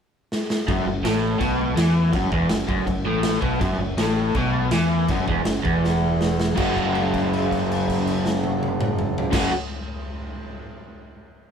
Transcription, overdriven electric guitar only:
0.68 0.86 F#2 loud
0.87 1.01 F#2 medium
1.04 1.39 A2 loud
1.39 1.76 B2 loud
1.76 2.13 E3 loud
2.13 2.31 F#2 loud
2.32 2.50 E2 loud
2.51 2.66 F#2 medium
2.68 2.85 F#2 loud
2.87 3.02 F#2 medium
3.05 3.41 A2 loud
3.41 3.60 B2 loud
3.60 3.79 F#2 loud
3.80 3.95 F#2 medium
3.98 4.35 A2 loud
4.36 4.72 B2 loud
4.72 5.09 E3 loud
5.10 5.28 F#2 loud
5.29 5.45 E2 loud
5.45 5.61 F#2 medium
5.64 6.54 E2 loud
6.55 9.30 F#2 medium
6.55 9.31 C#3 loud
6.55 9.32 F#3 loud
6.55 9.33 A#3 loud
6.59 9.33 C#4 loud
6.59 9.34 F#4 loud
9.31 9.48 F#2 loud
9.31 9.48 C#3 loud
9.31 9.49 F#3 loud
9.31 9.49 A#3 loud
9.31 9.49 C#4 loud
9.35 9.50 F#4 loud

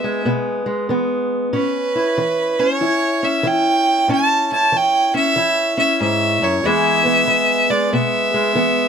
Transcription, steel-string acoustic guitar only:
0.00 0.22 E3 medium
0.00 0.25 B3 medium
0.04 0.65 G#3 medium
0.25 0.85 B2 medium
0.25 0.89 B3 medium
0.66 1.53 G#3 medium
0.89 1.49 E3 medium
0.89 1.54 B3 medium
1.53 2.13 A2 medium
1.53 2.59 C#4 medium
1.95 2.80 E4 medium
2.18 2.77 E3 medium
2.59 3.22 C#4 medium
2.81 3.41 E3 medium
2.81 3.43 E4 medium
3.23 4.06 C#4 medium
3.43 4.04 E3 medium
3.43 4.51 E4 medium
4.08 4.68 A2 medium
4.08 5.13 C#4 medium
4.52 5.37 E4 medium
4.72 5.32 E3 medium
5.14 5.76 C#4 medium
5.36 5.95 E3 medium
5.36 6.66 E4 medium
5.77 6.61 C#4 medium
6.01 6.42 G#2 medium
6.42 6.64 F#2 medium
6.64 7.23 E2 medium
6.64 7.27 E3 medium
6.64 7.70 G#3 medium
6.64 7.05 B3 medium
6.64 8.88 G#4 medium
7.05 7.93 B3 medium
7.27 7.87 E3 medium
7.70 8.33 G#3 medium
7.93 8.51 B2 medium
7.93 8.55 B3 medium
8.34 8.88 G#3 medium
8.55 8.88 E3 medium
8.55 8.88 B3 medium

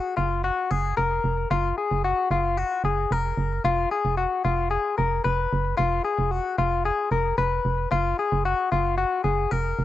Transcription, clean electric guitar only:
0.00 0.16 F#4 medium
0.17 0.44 F4 medium
0.44 0.70 F#4 medium
0.70 0.97 G#4 medium
0.97 1.48 A#4 medium
1.51 1.77 F4 medium
1.78 2.04 G#4 medium
2.04 2.31 F#4 medium
2.31 2.57 F4 medium
2.57 2.84 F#4 medium
2.85 3.12 G#4 medium
3.12 3.62 A#4 medium
3.65 3.91 F4 medium
3.91 4.17 G#4 medium
4.17 4.44 F#4 medium
4.45 4.70 F4 medium
4.71 4.97 G#4 medium
4.98 5.24 A#4 medium
5.24 5.75 B4 medium
5.77 6.04 F4 medium
6.05 6.31 G#4 medium
6.31 6.58 F#4 medium
6.58 6.85 F4 medium
6.85 7.11 G#4 medium
7.12 7.38 A#4 medium
7.38 7.88 B4 medium
7.92 8.18 F4 medium
8.19 8.45 G#4 medium
8.45 8.71 F#4 medium
8.72 8.97 F4 medium
8.98 9.24 F#4 medium
9.24 9.51 G#4 medium
9.51 9.85 A#4 medium

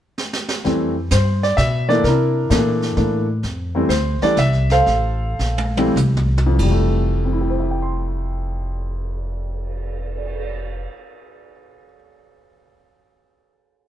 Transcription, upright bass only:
0.65 1.10 F2 medium
1.11 1.56 G2 medium
1.58 2.02 B2 medium
2.04 2.49 C3 medium
2.50 2.95 A#2 medium
2.97 3.41 A2 medium
3.43 3.88 F2 medium
3.89 4.19 D2 medium
4.22 muted upright bass stroke soft
4.37 4.85 C2 medium
4.86 5.38 A1 medium
5.39 5.95 A#1 medium
5.96 6.57 C2 medium
6.59 10.84 F1 medium

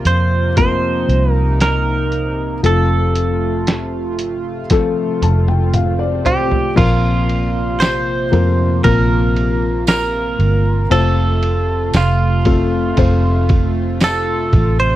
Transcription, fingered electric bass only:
0.05 1.05 F2 medium
1.09 2.60 C2 medium
2.63 4.19 F1 medium
4.19 5.18 G1 medium
5.22 6.22 F1 medium
6.78 8.29 A#1 medium
8.33 8.81 F2 medium
8.85 10.36 A#1 loud
10.39 10.87 G1 medium
10.91 11.91 F1 loud
11.94 12.94 F1 medium
12.98 14.49 F1 medium
14.53 14.96 A1 medium

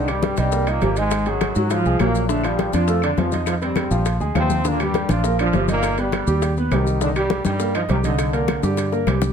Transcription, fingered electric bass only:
0.00 0.32 C2 medium
0.38 0.79 C2 medium
0.82 1.50 G#1 medium
1.56 1.83 G#2 medium
1.86 1.99 C2 medium
2.00 2.68 A#1 medium
2.73 3.15 F2 medium
3.17 3.86 F2 medium
3.91 4.18 A#1 medium
4.21 4.35 D2 medium
4.35 5.04 D#2 medium
5.09 5.50 A#1 medium
5.53 6.22 G1 medium
6.27 6.68 D#2 medium
6.71 7.40 C2 medium
7.45 7.86 G2 medium
7.89 8.58 C2 medium
8.63 9.04 G2 medium
9.07 9.33 C2 medium

